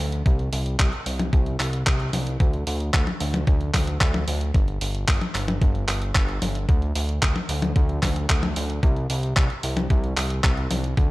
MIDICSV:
0, 0, Header, 1, 3, 480
1, 0, Start_track
1, 0, Tempo, 535714
1, 231, Time_signature, 4, 2, 24, 8
1, 9953, End_track
2, 0, Start_track
2, 0, Title_t, "Analog synth bass"
2, 0, Program_c, 0, 38
2, 0, Note_on_c, 0, 38, 89
2, 204, Note_off_c, 0, 38, 0
2, 231, Note_on_c, 0, 36, 97
2, 444, Note_off_c, 0, 36, 0
2, 470, Note_on_c, 0, 36, 99
2, 684, Note_off_c, 0, 36, 0
2, 711, Note_on_c, 0, 36, 106
2, 818, Note_off_c, 0, 36, 0
2, 951, Note_on_c, 0, 36, 83
2, 1164, Note_off_c, 0, 36, 0
2, 1191, Note_on_c, 0, 36, 102
2, 1404, Note_off_c, 0, 36, 0
2, 1431, Note_on_c, 0, 36, 83
2, 1644, Note_off_c, 0, 36, 0
2, 1671, Note_on_c, 0, 36, 101
2, 1884, Note_off_c, 0, 36, 0
2, 1911, Note_on_c, 0, 36, 91
2, 2124, Note_off_c, 0, 36, 0
2, 2151, Note_on_c, 0, 38, 101
2, 2364, Note_off_c, 0, 38, 0
2, 2392, Note_on_c, 0, 38, 97
2, 2605, Note_off_c, 0, 38, 0
2, 2631, Note_on_c, 0, 38, 109
2, 2738, Note_off_c, 0, 38, 0
2, 2872, Note_on_c, 0, 38, 86
2, 3084, Note_off_c, 0, 38, 0
2, 3112, Note_on_c, 0, 38, 98
2, 3325, Note_off_c, 0, 38, 0
2, 3351, Note_on_c, 0, 38, 86
2, 3564, Note_off_c, 0, 38, 0
2, 3591, Note_on_c, 0, 38, 103
2, 3804, Note_off_c, 0, 38, 0
2, 3831, Note_on_c, 0, 38, 90
2, 4044, Note_off_c, 0, 38, 0
2, 4072, Note_on_c, 0, 31, 97
2, 4284, Note_off_c, 0, 31, 0
2, 4312, Note_on_c, 0, 31, 94
2, 4525, Note_off_c, 0, 31, 0
2, 4552, Note_on_c, 0, 31, 104
2, 4658, Note_off_c, 0, 31, 0
2, 4791, Note_on_c, 0, 31, 84
2, 5004, Note_off_c, 0, 31, 0
2, 5031, Note_on_c, 0, 31, 97
2, 5244, Note_off_c, 0, 31, 0
2, 5272, Note_on_c, 0, 31, 86
2, 5485, Note_off_c, 0, 31, 0
2, 5511, Note_on_c, 0, 31, 99
2, 5724, Note_off_c, 0, 31, 0
2, 5751, Note_on_c, 0, 31, 90
2, 5964, Note_off_c, 0, 31, 0
2, 5991, Note_on_c, 0, 38, 101
2, 6204, Note_off_c, 0, 38, 0
2, 6232, Note_on_c, 0, 38, 95
2, 6445, Note_off_c, 0, 38, 0
2, 6472, Note_on_c, 0, 38, 106
2, 6578, Note_off_c, 0, 38, 0
2, 6712, Note_on_c, 0, 38, 84
2, 6925, Note_off_c, 0, 38, 0
2, 6952, Note_on_c, 0, 38, 98
2, 7165, Note_off_c, 0, 38, 0
2, 7191, Note_on_c, 0, 38, 88
2, 7405, Note_off_c, 0, 38, 0
2, 7431, Note_on_c, 0, 38, 98
2, 7644, Note_off_c, 0, 38, 0
2, 7672, Note_on_c, 0, 38, 91
2, 7885, Note_off_c, 0, 38, 0
2, 7912, Note_on_c, 0, 36, 99
2, 8125, Note_off_c, 0, 36, 0
2, 8152, Note_on_c, 0, 36, 97
2, 8365, Note_off_c, 0, 36, 0
2, 8392, Note_on_c, 0, 36, 105
2, 8498, Note_off_c, 0, 36, 0
2, 8633, Note_on_c, 0, 36, 86
2, 8845, Note_off_c, 0, 36, 0
2, 8872, Note_on_c, 0, 36, 102
2, 9085, Note_off_c, 0, 36, 0
2, 9114, Note_on_c, 0, 36, 86
2, 9326, Note_off_c, 0, 36, 0
2, 9352, Note_on_c, 0, 36, 101
2, 9565, Note_off_c, 0, 36, 0
2, 9594, Note_on_c, 0, 36, 89
2, 9806, Note_off_c, 0, 36, 0
2, 9832, Note_on_c, 0, 38, 100
2, 9953, Note_off_c, 0, 38, 0
2, 9953, End_track
3, 0, Start_track
3, 0, Title_t, "Drums"
3, 111, Note_on_c, 9, 42, 56
3, 200, Note_off_c, 9, 42, 0
3, 231, Note_on_c, 9, 36, 124
3, 232, Note_on_c, 9, 42, 52
3, 321, Note_off_c, 9, 36, 0
3, 321, Note_off_c, 9, 42, 0
3, 352, Note_on_c, 9, 42, 27
3, 441, Note_off_c, 9, 42, 0
3, 471, Note_on_c, 9, 46, 103
3, 561, Note_off_c, 9, 46, 0
3, 591, Note_on_c, 9, 42, 54
3, 680, Note_off_c, 9, 42, 0
3, 711, Note_on_c, 9, 36, 124
3, 711, Note_on_c, 9, 39, 127
3, 711, Note_on_c, 9, 42, 54
3, 801, Note_off_c, 9, 36, 0
3, 801, Note_off_c, 9, 39, 0
3, 801, Note_off_c, 9, 42, 0
3, 831, Note_on_c, 9, 42, 28
3, 921, Note_off_c, 9, 42, 0
3, 952, Note_on_c, 9, 46, 100
3, 1041, Note_off_c, 9, 46, 0
3, 1071, Note_on_c, 9, 42, 54
3, 1071, Note_on_c, 9, 48, 77
3, 1160, Note_off_c, 9, 42, 0
3, 1160, Note_off_c, 9, 48, 0
3, 1191, Note_on_c, 9, 36, 125
3, 1191, Note_on_c, 9, 42, 55
3, 1281, Note_off_c, 9, 36, 0
3, 1281, Note_off_c, 9, 42, 0
3, 1311, Note_on_c, 9, 42, 27
3, 1401, Note_off_c, 9, 42, 0
3, 1431, Note_on_c, 9, 39, 63
3, 1431, Note_on_c, 9, 46, 101
3, 1521, Note_off_c, 9, 39, 0
3, 1521, Note_off_c, 9, 46, 0
3, 1551, Note_on_c, 9, 42, 57
3, 1641, Note_off_c, 9, 42, 0
3, 1671, Note_on_c, 9, 36, 121
3, 1671, Note_on_c, 9, 39, 127
3, 1671, Note_on_c, 9, 42, 56
3, 1761, Note_off_c, 9, 36, 0
3, 1761, Note_off_c, 9, 39, 0
3, 1761, Note_off_c, 9, 42, 0
3, 1791, Note_on_c, 9, 42, 28
3, 1881, Note_off_c, 9, 42, 0
3, 1911, Note_on_c, 9, 46, 102
3, 1911, Note_on_c, 9, 48, 62
3, 2001, Note_off_c, 9, 46, 0
3, 2001, Note_off_c, 9, 48, 0
3, 2032, Note_on_c, 9, 42, 56
3, 2121, Note_off_c, 9, 42, 0
3, 2151, Note_on_c, 9, 36, 125
3, 2151, Note_on_c, 9, 42, 52
3, 2241, Note_off_c, 9, 36, 0
3, 2241, Note_off_c, 9, 42, 0
3, 2271, Note_on_c, 9, 42, 26
3, 2360, Note_off_c, 9, 42, 0
3, 2391, Note_on_c, 9, 46, 100
3, 2481, Note_off_c, 9, 46, 0
3, 2511, Note_on_c, 9, 42, 51
3, 2601, Note_off_c, 9, 42, 0
3, 2631, Note_on_c, 9, 36, 125
3, 2631, Note_on_c, 9, 39, 127
3, 2631, Note_on_c, 9, 42, 52
3, 2721, Note_off_c, 9, 36, 0
3, 2721, Note_off_c, 9, 39, 0
3, 2721, Note_off_c, 9, 42, 0
3, 2751, Note_on_c, 9, 42, 27
3, 2751, Note_on_c, 9, 48, 62
3, 2841, Note_off_c, 9, 42, 0
3, 2841, Note_off_c, 9, 48, 0
3, 2871, Note_on_c, 9, 46, 98
3, 2961, Note_off_c, 9, 46, 0
3, 2992, Note_on_c, 9, 42, 53
3, 2992, Note_on_c, 9, 48, 80
3, 3081, Note_off_c, 9, 42, 0
3, 3081, Note_off_c, 9, 48, 0
3, 3111, Note_on_c, 9, 42, 52
3, 3112, Note_on_c, 9, 36, 125
3, 3200, Note_off_c, 9, 42, 0
3, 3201, Note_off_c, 9, 36, 0
3, 3231, Note_on_c, 9, 42, 26
3, 3320, Note_off_c, 9, 42, 0
3, 3351, Note_on_c, 9, 36, 67
3, 3351, Note_on_c, 9, 39, 65
3, 3351, Note_on_c, 9, 46, 104
3, 3351, Note_on_c, 9, 48, 60
3, 3441, Note_off_c, 9, 36, 0
3, 3441, Note_off_c, 9, 39, 0
3, 3441, Note_off_c, 9, 46, 0
3, 3441, Note_off_c, 9, 48, 0
3, 3471, Note_on_c, 9, 42, 54
3, 3561, Note_off_c, 9, 42, 0
3, 3591, Note_on_c, 9, 36, 126
3, 3592, Note_on_c, 9, 39, 127
3, 3592, Note_on_c, 9, 42, 53
3, 3681, Note_off_c, 9, 36, 0
3, 3681, Note_off_c, 9, 39, 0
3, 3681, Note_off_c, 9, 42, 0
3, 3711, Note_on_c, 9, 42, 27
3, 3711, Note_on_c, 9, 48, 83
3, 3801, Note_off_c, 9, 42, 0
3, 3801, Note_off_c, 9, 48, 0
3, 3831, Note_on_c, 9, 46, 104
3, 3921, Note_off_c, 9, 46, 0
3, 3952, Note_on_c, 9, 42, 54
3, 4042, Note_off_c, 9, 42, 0
3, 4072, Note_on_c, 9, 36, 124
3, 4072, Note_on_c, 9, 42, 51
3, 4161, Note_off_c, 9, 36, 0
3, 4162, Note_off_c, 9, 42, 0
3, 4192, Note_on_c, 9, 42, 24
3, 4282, Note_off_c, 9, 42, 0
3, 4312, Note_on_c, 9, 46, 107
3, 4402, Note_off_c, 9, 46, 0
3, 4432, Note_on_c, 9, 42, 50
3, 4521, Note_off_c, 9, 42, 0
3, 4552, Note_on_c, 9, 36, 126
3, 4552, Note_on_c, 9, 39, 124
3, 4552, Note_on_c, 9, 46, 60
3, 4641, Note_off_c, 9, 36, 0
3, 4642, Note_off_c, 9, 39, 0
3, 4642, Note_off_c, 9, 46, 0
3, 4672, Note_on_c, 9, 42, 26
3, 4672, Note_on_c, 9, 48, 65
3, 4762, Note_off_c, 9, 42, 0
3, 4762, Note_off_c, 9, 48, 0
3, 4792, Note_on_c, 9, 39, 50
3, 4792, Note_on_c, 9, 46, 102
3, 4881, Note_off_c, 9, 39, 0
3, 4881, Note_off_c, 9, 46, 0
3, 4912, Note_on_c, 9, 42, 51
3, 4912, Note_on_c, 9, 48, 82
3, 5002, Note_off_c, 9, 42, 0
3, 5002, Note_off_c, 9, 48, 0
3, 5031, Note_on_c, 9, 36, 125
3, 5032, Note_on_c, 9, 42, 52
3, 5121, Note_off_c, 9, 36, 0
3, 5122, Note_off_c, 9, 42, 0
3, 5152, Note_on_c, 9, 42, 25
3, 5241, Note_off_c, 9, 42, 0
3, 5270, Note_on_c, 9, 39, 62
3, 5270, Note_on_c, 9, 46, 101
3, 5360, Note_off_c, 9, 39, 0
3, 5360, Note_off_c, 9, 46, 0
3, 5391, Note_on_c, 9, 42, 51
3, 5480, Note_off_c, 9, 42, 0
3, 5511, Note_on_c, 9, 36, 119
3, 5511, Note_on_c, 9, 39, 125
3, 5511, Note_on_c, 9, 42, 54
3, 5601, Note_off_c, 9, 36, 0
3, 5601, Note_off_c, 9, 39, 0
3, 5601, Note_off_c, 9, 42, 0
3, 5632, Note_on_c, 9, 42, 26
3, 5721, Note_off_c, 9, 42, 0
3, 5751, Note_on_c, 9, 46, 105
3, 5751, Note_on_c, 9, 48, 65
3, 5841, Note_off_c, 9, 46, 0
3, 5841, Note_off_c, 9, 48, 0
3, 5871, Note_on_c, 9, 42, 51
3, 5961, Note_off_c, 9, 42, 0
3, 5991, Note_on_c, 9, 36, 119
3, 5992, Note_on_c, 9, 42, 49
3, 6081, Note_off_c, 9, 36, 0
3, 6082, Note_off_c, 9, 42, 0
3, 6112, Note_on_c, 9, 42, 25
3, 6202, Note_off_c, 9, 42, 0
3, 6231, Note_on_c, 9, 46, 112
3, 6321, Note_off_c, 9, 46, 0
3, 6352, Note_on_c, 9, 42, 50
3, 6442, Note_off_c, 9, 42, 0
3, 6471, Note_on_c, 9, 36, 121
3, 6472, Note_on_c, 9, 39, 120
3, 6472, Note_on_c, 9, 42, 52
3, 6561, Note_off_c, 9, 36, 0
3, 6562, Note_off_c, 9, 39, 0
3, 6562, Note_off_c, 9, 42, 0
3, 6592, Note_on_c, 9, 42, 27
3, 6592, Note_on_c, 9, 48, 68
3, 6682, Note_off_c, 9, 42, 0
3, 6682, Note_off_c, 9, 48, 0
3, 6711, Note_on_c, 9, 46, 105
3, 6801, Note_off_c, 9, 46, 0
3, 6831, Note_on_c, 9, 42, 51
3, 6831, Note_on_c, 9, 48, 83
3, 6920, Note_off_c, 9, 42, 0
3, 6920, Note_off_c, 9, 48, 0
3, 6951, Note_on_c, 9, 36, 123
3, 6951, Note_on_c, 9, 42, 51
3, 7041, Note_off_c, 9, 36, 0
3, 7041, Note_off_c, 9, 42, 0
3, 7072, Note_on_c, 9, 42, 25
3, 7161, Note_off_c, 9, 42, 0
3, 7192, Note_on_c, 9, 36, 63
3, 7192, Note_on_c, 9, 39, 61
3, 7192, Note_on_c, 9, 46, 105
3, 7192, Note_on_c, 9, 48, 64
3, 7281, Note_off_c, 9, 36, 0
3, 7282, Note_off_c, 9, 39, 0
3, 7282, Note_off_c, 9, 46, 0
3, 7282, Note_off_c, 9, 48, 0
3, 7313, Note_on_c, 9, 42, 53
3, 7402, Note_off_c, 9, 42, 0
3, 7432, Note_on_c, 9, 36, 119
3, 7432, Note_on_c, 9, 39, 124
3, 7521, Note_off_c, 9, 36, 0
3, 7522, Note_off_c, 9, 39, 0
3, 7553, Note_on_c, 9, 42, 26
3, 7553, Note_on_c, 9, 48, 88
3, 7642, Note_off_c, 9, 42, 0
3, 7642, Note_off_c, 9, 48, 0
3, 7672, Note_on_c, 9, 46, 111
3, 7762, Note_off_c, 9, 46, 0
3, 7793, Note_on_c, 9, 42, 52
3, 7883, Note_off_c, 9, 42, 0
3, 7912, Note_on_c, 9, 36, 114
3, 7913, Note_on_c, 9, 42, 52
3, 8001, Note_off_c, 9, 36, 0
3, 8002, Note_off_c, 9, 42, 0
3, 8033, Note_on_c, 9, 42, 26
3, 8122, Note_off_c, 9, 42, 0
3, 8152, Note_on_c, 9, 46, 109
3, 8242, Note_off_c, 9, 46, 0
3, 8272, Note_on_c, 9, 42, 54
3, 8361, Note_off_c, 9, 42, 0
3, 8392, Note_on_c, 9, 36, 115
3, 8392, Note_on_c, 9, 39, 117
3, 8392, Note_on_c, 9, 42, 54
3, 8481, Note_off_c, 9, 36, 0
3, 8481, Note_off_c, 9, 39, 0
3, 8481, Note_off_c, 9, 42, 0
3, 8512, Note_on_c, 9, 42, 28
3, 8601, Note_off_c, 9, 42, 0
3, 8631, Note_on_c, 9, 46, 109
3, 8721, Note_off_c, 9, 46, 0
3, 8752, Note_on_c, 9, 42, 52
3, 8752, Note_on_c, 9, 48, 87
3, 8841, Note_off_c, 9, 42, 0
3, 8841, Note_off_c, 9, 48, 0
3, 8872, Note_on_c, 9, 36, 114
3, 8872, Note_on_c, 9, 42, 52
3, 8962, Note_off_c, 9, 36, 0
3, 8962, Note_off_c, 9, 42, 0
3, 8993, Note_on_c, 9, 42, 27
3, 9082, Note_off_c, 9, 42, 0
3, 9113, Note_on_c, 9, 39, 60
3, 9113, Note_on_c, 9, 46, 108
3, 9202, Note_off_c, 9, 39, 0
3, 9202, Note_off_c, 9, 46, 0
3, 9232, Note_on_c, 9, 42, 53
3, 9322, Note_off_c, 9, 42, 0
3, 9352, Note_on_c, 9, 36, 112
3, 9353, Note_on_c, 9, 39, 124
3, 9353, Note_on_c, 9, 42, 55
3, 9442, Note_off_c, 9, 36, 0
3, 9442, Note_off_c, 9, 39, 0
3, 9442, Note_off_c, 9, 42, 0
3, 9473, Note_on_c, 9, 42, 28
3, 9563, Note_off_c, 9, 42, 0
3, 9593, Note_on_c, 9, 46, 113
3, 9593, Note_on_c, 9, 48, 68
3, 9682, Note_off_c, 9, 46, 0
3, 9682, Note_off_c, 9, 48, 0
3, 9713, Note_on_c, 9, 42, 54
3, 9803, Note_off_c, 9, 42, 0
3, 9832, Note_on_c, 9, 36, 118
3, 9833, Note_on_c, 9, 42, 54
3, 9922, Note_off_c, 9, 36, 0
3, 9923, Note_off_c, 9, 42, 0
3, 9953, End_track
0, 0, End_of_file